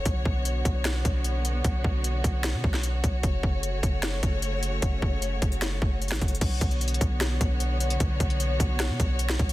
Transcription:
Already playing: string section C#5
0.05 808-style bass B1, string section D3 B3 F#4, kick, closed hi-hat
0.25 808-style bass B1, kick
0.45 closed hi-hat
0.65 808-style bass B1, kick, closed hi-hat
0.85 snare, closed hi-hat
1.05 808-style bass B1, kick, closed hi-hat
1.24 closed hi-hat
1.45 closed hi-hat
1.64 808-style bass B1, kick, closed hi-hat
1.84 808-style bass B1, kick
2.04 closed hi-hat
2.24 808-style bass B1, kick, closed hi-hat
2.44 snare, closed hi-hat
2.54 808-style bass B2
2.64 808-style bass B1, kick
2.74 snare
2.83 closed hi-hat
3.04 808-style bass B1, kick, closed hi-hat
3.23 808-style bass F#1, string section C#3 A3 C#5, kick, closed hi-hat
3.43 808-style bass F#1, kick
3.63 closed hi-hat
3.83 808-style bass F#1, kick, closed hi-hat
4.03 snare, closed hi-hat
4.23 808-style bass F#1, kick, closed hi-hat
4.42 closed hi-hat
4.63 closed hi-hat
4.82 808-style bass F#1, kick, closed hi-hat
5.02 808-style bass F#1, kick
5.22 closed hi-hat
5.42 808-style bass F#1, kick, closed hi-hat
5.52 closed hi-hat
5.62 snare, closed hi-hat
5.82 808-style bass F#1, kick
6.02 closed hi-hat
6.08 808-style bass A1, snare, closed hi-hat
6.15 closed hi-hat
6.21 808-style bass F#1, kick, closed hi-hat
6.28 closed hi-hat
6.35 closed hi-hat
6.41 808-style bass B1, string section D3 B3 F#4 C#5, kick, closed hi-hat, crash
6.61 808-style bass B1, kick, closed hi-hat
6.71 closed hi-hat
6.81 closed hi-hat
6.88 closed hi-hat
6.94 closed hi-hat
7.01 808-style bass B1, kick, closed hi-hat
7.21 cross-stick, snare, closed hi-hat
7.41 808-style bass B1, kick, closed hi-hat
7.60 closed hi-hat
7.80 closed hi-hat
7.90 closed hi-hat
8.00 808-style bass B1, kick, closed hi-hat
8.20 808-style bass B1, kick, closed hi-hat
8.30 closed hi-hat
8.40 closed hi-hat
8.60 808-style bass B1, kick, closed hi-hat
8.80 cross-stick, snare, closed hi-hat
8.90 808-style bass B2
9.00 808-style bass B1, kick, closed hi-hat
9.19 closed hi-hat
9.29 snare
9.39 808-style bass B1, kick, closed hi-hat
9.49 closed hi-hat

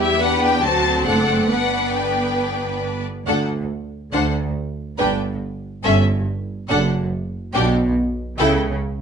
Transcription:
Already playing: double bass section E2, viola section G3 E4, violin section G4 B4, cello section G4
0.01 violin section E5
0.20 viola section B3 D4, violin section G4 B4 F#5, cello section B4
0.43 violin section G5
0.62 double bass section D2, viola section F#3 C4, violin section D4 C5 A5, cello section F#4
1.06 double bass section F#1, viola section A3, cello section A4, violin section D5 F#5
1.28 viola section A3
1.49 double bass section G1, viola section B3, violin section D4 D5 F#5, cello section B4
1.93 violin section G5
3.26 cello section D2, double bass section D2, viola section D4, violin section A4 F#5
4.12 cello section D2, double bass section D2, viola section D4, violin section C5 F#5
4.98 double bass section G1, cello section G2, viola section D4, violin section B4 G5
5.84 double bass section G1, cello section G2, viola section C#4, violin section A4 E5
6.69 double bass section F#1, cello section F#2, viola section D4, violin section A4 F#5
7.54 double bass section B1, cello section B2, viola section D4, violin section G4 G5
8.38 double bass section C#2, cello section C#3, viola section E4, violin section A4 G5

